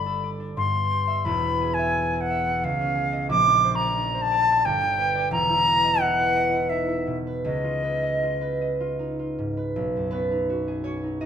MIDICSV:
0, 0, Header, 1, 3, 480
1, 0, Start_track
1, 0, Tempo, 691244
1, 866, Time_signature, 3, 2, 24, 8
1, 1353, Tempo, 678733
1, 4713, Tempo, 768246
1, 6633, Tempo, 721154
1, 7621, End_track
2, 0, Start_track
2, 0, Title_t, "Flute"
2, 0, Program_c, 0, 73
2, 0, Note_on_c, 0, 83, 94
2, 204, Note_off_c, 0, 83, 0
2, 393, Note_on_c, 0, 84, 105
2, 864, Note_on_c, 0, 83, 100
2, 874, Note_off_c, 0, 84, 0
2, 1204, Note_on_c, 0, 80, 98
2, 1214, Note_off_c, 0, 83, 0
2, 1532, Note_on_c, 0, 78, 102
2, 1542, Note_off_c, 0, 80, 0
2, 1839, Note_on_c, 0, 77, 109
2, 1850, Note_off_c, 0, 78, 0
2, 2304, Note_off_c, 0, 77, 0
2, 2307, Note_on_c, 0, 86, 117
2, 2626, Note_on_c, 0, 82, 102
2, 2636, Note_off_c, 0, 86, 0
2, 2953, Note_on_c, 0, 81, 118
2, 2964, Note_off_c, 0, 82, 0
2, 3261, Note_on_c, 0, 79, 116
2, 3272, Note_off_c, 0, 81, 0
2, 3731, Note_off_c, 0, 79, 0
2, 3735, Note_on_c, 0, 82, 119
2, 4219, Note_on_c, 0, 78, 112
2, 4230, Note_off_c, 0, 82, 0
2, 4705, Note_on_c, 0, 76, 92
2, 4715, Note_off_c, 0, 78, 0
2, 5010, Note_off_c, 0, 76, 0
2, 5185, Note_on_c, 0, 75, 95
2, 6124, Note_off_c, 0, 75, 0
2, 7621, End_track
3, 0, Start_track
3, 0, Title_t, "Harp"
3, 0, Program_c, 1, 46
3, 0, Note_on_c, 1, 31, 62
3, 0, Note_on_c, 1, 43, 71
3, 0, Note_on_c, 1, 62, 52
3, 0, Note_on_c, 1, 74, 54
3, 43, Note_on_c, 1, 69, 57
3, 155, Note_off_c, 1, 74, 0
3, 163, Note_on_c, 1, 74, 54
3, 269, Note_off_c, 1, 62, 0
3, 277, Note_on_c, 1, 62, 52
3, 387, Note_off_c, 1, 43, 0
3, 396, Note_on_c, 1, 43, 69
3, 408, Note_off_c, 1, 31, 0
3, 409, Note_off_c, 1, 62, 0
3, 409, Note_off_c, 1, 69, 0
3, 411, Note_off_c, 1, 74, 0
3, 516, Note_on_c, 1, 59, 49
3, 632, Note_on_c, 1, 67, 55
3, 745, Note_on_c, 1, 76, 57
3, 868, Note_on_c, 1, 28, 75
3, 876, Note_on_c, 1, 40, 77
3, 890, Note_off_c, 1, 67, 0
3, 891, Note_off_c, 1, 43, 0
3, 993, Note_off_c, 1, 59, 0
3, 1001, Note_on_c, 1, 59, 55
3, 1120, Note_on_c, 1, 68, 60
3, 1233, Note_off_c, 1, 76, 0
3, 1242, Note_on_c, 1, 76, 63
3, 1356, Note_off_c, 1, 59, 0
3, 1365, Note_on_c, 1, 59, 57
3, 1473, Note_off_c, 1, 68, 0
3, 1482, Note_on_c, 1, 68, 62
3, 1594, Note_off_c, 1, 76, 0
3, 1602, Note_on_c, 1, 76, 59
3, 1712, Note_off_c, 1, 59, 0
3, 1721, Note_on_c, 1, 59, 54
3, 1838, Note_on_c, 1, 37, 75
3, 1850, Note_off_c, 1, 28, 0
3, 1852, Note_off_c, 1, 76, 0
3, 1853, Note_off_c, 1, 59, 0
3, 1854, Note_off_c, 1, 40, 0
3, 1961, Note_on_c, 1, 61, 53
3, 2055, Note_off_c, 1, 68, 0
3, 2063, Note_on_c, 1, 68, 62
3, 2185, Note_on_c, 1, 75, 67
3, 2305, Note_on_c, 1, 34, 82
3, 2319, Note_off_c, 1, 68, 0
3, 2321, Note_off_c, 1, 75, 0
3, 2323, Note_off_c, 1, 37, 0
3, 2326, Note_off_c, 1, 61, 0
3, 2432, Note_on_c, 1, 62, 60
3, 2552, Note_on_c, 1, 72, 65
3, 2668, Note_on_c, 1, 74, 64
3, 2778, Note_off_c, 1, 62, 0
3, 2786, Note_on_c, 1, 62, 63
3, 2894, Note_off_c, 1, 72, 0
3, 2903, Note_on_c, 1, 72, 63
3, 3019, Note_off_c, 1, 74, 0
3, 3027, Note_on_c, 1, 74, 61
3, 3146, Note_off_c, 1, 62, 0
3, 3154, Note_on_c, 1, 62, 56
3, 3265, Note_on_c, 1, 31, 77
3, 3288, Note_off_c, 1, 72, 0
3, 3293, Note_off_c, 1, 34, 0
3, 3377, Note_off_c, 1, 62, 0
3, 3385, Note_on_c, 1, 62, 58
3, 3498, Note_on_c, 1, 71, 64
3, 3612, Note_off_c, 1, 74, 0
3, 3621, Note_on_c, 1, 74, 65
3, 3727, Note_on_c, 1, 28, 78
3, 3732, Note_on_c, 1, 40, 83
3, 3759, Note_off_c, 1, 31, 0
3, 3760, Note_off_c, 1, 62, 0
3, 3760, Note_off_c, 1, 74, 0
3, 3858, Note_on_c, 1, 64, 60
3, 3975, Note_off_c, 1, 71, 0
3, 3984, Note_on_c, 1, 71, 65
3, 4104, Note_on_c, 1, 75, 63
3, 4216, Note_off_c, 1, 64, 0
3, 4225, Note_on_c, 1, 64, 58
3, 4345, Note_off_c, 1, 71, 0
3, 4354, Note_on_c, 1, 71, 61
3, 4461, Note_off_c, 1, 75, 0
3, 4470, Note_on_c, 1, 75, 61
3, 4579, Note_off_c, 1, 64, 0
3, 4588, Note_on_c, 1, 64, 52
3, 4712, Note_on_c, 1, 63, 54
3, 4820, Note_off_c, 1, 64, 0
3, 4827, Note_on_c, 1, 64, 55
3, 4907, Note_off_c, 1, 63, 0
3, 4944, Note_on_c, 1, 47, 58
3, 5061, Note_off_c, 1, 71, 0
3, 5069, Note_on_c, 1, 71, 59
3, 5179, Note_on_c, 1, 37, 74
3, 5197, Note_off_c, 1, 28, 0
3, 5199, Note_off_c, 1, 40, 0
3, 5204, Note_off_c, 1, 47, 0
3, 5204, Note_off_c, 1, 64, 0
3, 5298, Note_on_c, 1, 65, 53
3, 5410, Note_off_c, 1, 71, 0
3, 5418, Note_on_c, 1, 71, 58
3, 5536, Note_off_c, 1, 75, 0
3, 5544, Note_on_c, 1, 75, 58
3, 5660, Note_off_c, 1, 65, 0
3, 5668, Note_on_c, 1, 65, 55
3, 5775, Note_off_c, 1, 71, 0
3, 5782, Note_on_c, 1, 71, 56
3, 5901, Note_off_c, 1, 75, 0
3, 5908, Note_on_c, 1, 75, 57
3, 6020, Note_off_c, 1, 65, 0
3, 6028, Note_on_c, 1, 65, 53
3, 6144, Note_on_c, 1, 63, 47
3, 6263, Note_off_c, 1, 65, 0
3, 6270, Note_on_c, 1, 65, 48
3, 6356, Note_off_c, 1, 63, 0
3, 6391, Note_on_c, 1, 44, 52
3, 6500, Note_off_c, 1, 71, 0
3, 6507, Note_on_c, 1, 71, 55
3, 6625, Note_on_c, 1, 35, 66
3, 6652, Note_off_c, 1, 37, 0
3, 6652, Note_off_c, 1, 44, 0
3, 6654, Note_off_c, 1, 65, 0
3, 6757, Note_on_c, 1, 42, 42
3, 6848, Note_off_c, 1, 71, 0
3, 6856, Note_on_c, 1, 71, 81
3, 6863, Note_on_c, 1, 59, 59
3, 6865, Note_on_c, 1, 61, 46
3, 6994, Note_on_c, 1, 63, 49
3, 7113, Note_on_c, 1, 66, 49
3, 7235, Note_on_c, 1, 68, 51
3, 7343, Note_off_c, 1, 61, 0
3, 7343, Note_off_c, 1, 66, 0
3, 7343, Note_on_c, 1, 73, 76
3, 7349, Note_on_c, 1, 61, 61
3, 7353, Note_on_c, 1, 66, 46
3, 7465, Note_off_c, 1, 63, 0
3, 7473, Note_on_c, 1, 63, 41
3, 7581, Note_off_c, 1, 75, 0
3, 7587, Note_off_c, 1, 63, 0
3, 7588, Note_off_c, 1, 66, 0
3, 7589, Note_on_c, 1, 75, 83
3, 7594, Note_on_c, 1, 63, 63
3, 7597, Note_on_c, 1, 66, 50
3, 7621, Note_off_c, 1, 35, 0
3, 7621, Note_off_c, 1, 42, 0
3, 7621, Note_off_c, 1, 59, 0
3, 7621, Note_off_c, 1, 61, 0
3, 7621, Note_off_c, 1, 63, 0
3, 7621, Note_off_c, 1, 66, 0
3, 7621, Note_off_c, 1, 68, 0
3, 7621, Note_off_c, 1, 71, 0
3, 7621, Note_off_c, 1, 73, 0
3, 7621, Note_off_c, 1, 75, 0
3, 7621, End_track
0, 0, End_of_file